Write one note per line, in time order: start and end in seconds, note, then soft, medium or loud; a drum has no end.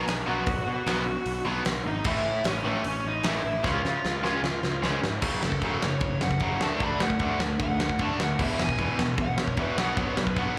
0.07 0.22 B1 loud
0.07 0.13 G#4 medium
0.07 0.12 G#5 medium
0.07 snare loud
0.07 open hi-hat medium
0.26 0.42 B1 medium
0.26 0.43 B2 medium
0.26 0.43 F#3 loud
0.26 0.43 B3 loud
0.26 1.43 F#4 medium
0.26 1.43 F#5 medium
0.46 0.62 B1 medium
0.46 kick loud
0.46 open hi-hat medium
0.66 0.81 B2 loud
0.87 1.16 B1 medium
0.87 1.02 B2 medium
0.87 1.03 F#3 medium
0.87 1.03 B3 loud
0.87 snare loud
0.87 open hi-hat medium
1.26 1.41 B1 loud
1.26 open hi-hat medium
1.45 1.61 B1 medium
1.45 1.61 B2 loud
1.45 1.62 F#3 loud
1.45 1.62 B3 loud
1.65 1.81 B1 loud
1.65 snare loud
1.65 open hi-hat medium
1.86 2.00 G#1 medium
1.86 2.04 D#4 medium
1.86 2.07 D#5 medium
2.04 2.20 A1 loud
2.04 2.21 A2 medium
2.04 2.21 E3 loud
2.04 2.22 A3 loud
2.04 2.43 E4 medium
2.04 2.47 E5 medium
2.04 kick loud
2.04 crash loud
2.25 2.39 A2 loud
2.44 2.74 A1 loud
2.44 2.65 C#4 medium
2.44 2.66 C#5 medium
2.44 snare loud
2.44 open hi-hat medium
2.65 2.81 A2 loud
2.65 2.81 E3 loud
2.65 2.81 A3 loud
2.65 2.85 C#4 medium
2.65 2.85 C#5 medium
2.84 3.00 A1 medium
2.84 3.04 C#4 medium
2.84 3.06 C#5 medium
2.84 open hi-hat medium
3.05 3.19 A1 medium
3.05 3.24 D#4 medium
3.05 3.25 D#5 medium
3.23 3.39 A1 loud
3.23 3.40 A2 medium
3.23 3.40 E3 loud
3.23 3.41 A3 loud
3.23 3.62 E4 medium
3.23 3.63 E5 loud
3.23 snare loud
3.23 open hi-hat medium
3.45 3.59 A1 medium
3.64 3.79 C#2 loud
3.64 3.80 C#3 medium
3.64 3.80 G#3 loud
3.64 3.80 C#4 loud
3.64 4.79 F4 medium
3.64 4.79 F5 loud
3.64 kick loud
3.64 snare medium
3.85 3.99 C#3 medium
3.85 snare medium
4.05 4.33 C#2 loud
4.05 snare medium
4.23 4.39 C#3 loud
4.23 4.39 G#3 loud
4.23 4.40 C#4 loud
4.23 snare medium
4.43 4.58 C#2 medium
4.43 snare loud
4.63 4.78 C#2 medium
4.63 snare medium
4.83 4.98 C#2 loud
4.83 4.98 C#3 medium
4.83 4.99 G#3 loud
4.83 4.99 C#4 loud
4.83 snare loud
5.03 5.17 G#2 loud
5.03 snare loud
5.22 5.36 F#1 medium
5.22 5.41 F#2 medium
5.22 5.41 C#3 medium
5.22 5.41 F#3 medium
5.22 kick loud
5.22 crash loud
5.43 5.56 F#1 loud
5.43 5.60 F#2 medium
5.43 5.60 C#3 medium
5.43 5.82 A4 medium
5.43 snare loud
5.52 kick medium
5.62 5.75 F#1 medium
5.62 5.81 F#2 medium
5.62 5.81 C#3 loud
5.62 5.82 F#3 loud
5.62 kick medium
5.62 ride medium
5.82 5.96 F#1 medium
5.82 6.00 F#2 medium
5.82 6.00 C#3 medium
5.82 6.21 C#5 medium
5.82 snare loud
6.00 6.28 F#1 medium
6.00 6.20 F#2 medium
6.00 6.20 C#3 medium
6.00 kick loud
6.00 ride medium
6.21 6.39 F#2 medium
6.21 6.39 C#3 medium
6.21 6.61 F#5 medium
6.21 snare loud
6.31 kick medium
6.40 6.54 F#1 medium
6.40 6.60 F#2 medium
6.40 6.60 C#3 medium
6.40 6.60 F#3 loud
6.40 kick loud
6.40 ride medium
6.60 6.74 D2 medium
6.60 6.80 D3 medium
6.60 6.80 A3 medium
6.60 6.80 D4 loud
6.60 6.81 A5 medium
6.60 snare loud
6.80 6.94 D2 loud
6.80 7.00 D3 medium
6.80 7.00 A3 medium
6.80 7.00 D4 loud
6.80 7.02 B5 medium
6.80 kick loud
6.80 ride medium
7.00 7.14 D2 loud
7.00 7.19 D3 medium
7.00 7.19 A3 medium
7.00 7.40 F#5 medium
7.00 snare loud
7.10 kick medium
7.19 7.34 D2 medium
7.19 7.39 D3 medium
7.19 7.39 A3 medium
7.19 7.39 D4 loud
7.19 kick loud
7.19 ride medium
7.40 7.53 D2 medium
7.40 7.58 D3 medium
7.40 7.58 A3 medium
7.40 snare loud
7.59 7.87 D2 medium
7.59 7.78 D3 medium
7.59 7.78 A3 medium
7.59 8.00 F#5 loud
7.59 kick loud
7.59 ride medium
7.80 7.98 D3 medium
7.80 7.99 A3 medium
7.80 snare loud
7.89 kick medium
7.99 8.13 D2 loud
7.99 8.19 D3 medium
7.99 8.19 A3 loud
7.99 8.19 D4 loud
7.99 8.20 A5 medium
7.99 kick loud
7.99 ride medium
8.20 8.33 D2 medium
8.20 8.38 D3 medium
8.20 8.38 A3 medium
8.20 8.40 F#5 medium
8.20 snare loud
8.39 8.53 E1 loud
8.39 8.58 E2 medium
8.39 8.58 B2 loud
8.39 8.59 E3 loud
8.39 8.60 E5 medium
8.39 kick loud
8.39 crash loud
8.59 8.73 E1 loud
8.59 8.77 E2 medium
8.59 8.78 B2 medium
8.59 9.00 G#5 loud
8.59 snare loud
8.69 kick medium
8.79 8.92 E1 medium
8.79 8.97 E2 medium
8.79 8.97 B2 medium
8.79 8.98 E3 medium
8.79 kick loud
8.79 ride medium
8.98 9.12 E1 loud
8.98 9.16 E2 medium
8.98 9.17 B2 medium
8.98 snare loud
9.18 9.46 E1 medium
9.18 9.37 E2 medium
9.18 9.37 B2 medium
9.18 kick loud
9.18 ride medium
9.22 9.40 F#5 loud
9.38 9.56 E2 medium
9.38 9.56 B2 medium
9.38 9.59 C#5 medium
9.38 snare loud
9.48 kick medium
9.57 9.71 E1 loud
9.57 9.77 E2 medium
9.57 9.76 B2 loud
9.57 9.77 E3 medium
9.57 9.79 B4 medium
9.57 kick loud
9.57 ride medium
9.77 9.92 B1 medium
9.77 9.95 B2 medium
9.77 9.96 F#3 medium
9.77 9.97 B3 medium
9.77 9.99 F#5 loud
9.77 snare loud
9.97 10.11 B1 loud
9.97 10.15 B2 medium
9.97 10.16 F#3 loud
9.97 10.17 B3 loud
9.97 10.18 C#5 medium
9.97 kick loud
9.97 ride medium
10.16 10.30 B1 medium
10.16 10.35 B2 medium
10.16 10.35 F#3 medium
10.16 snare loud
10.22 10.39 B4 medium
10.27 kick medium
10.36 10.50 B1 medium
10.36 10.55 B2 medium
10.36 10.56 F#3 medium
10.36 10.56 B3 loud
10.36 10.58 F#5 loud
10.36 kick loud
10.36 ride medium